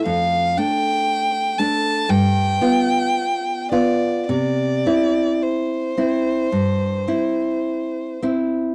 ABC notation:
X:1
M:4/4
L:1/8
Q:1/4=54
K:C
V:1 name="Violin"
f g2 a g3 d | d2 c4- c z |]
V:2 name="Nylon-string guitar"
F,, [A,D]2 [A,D] G,, [B,F]2 [B,F] | C, [CE]2 [CE] G,, [CE]2 [CE] |]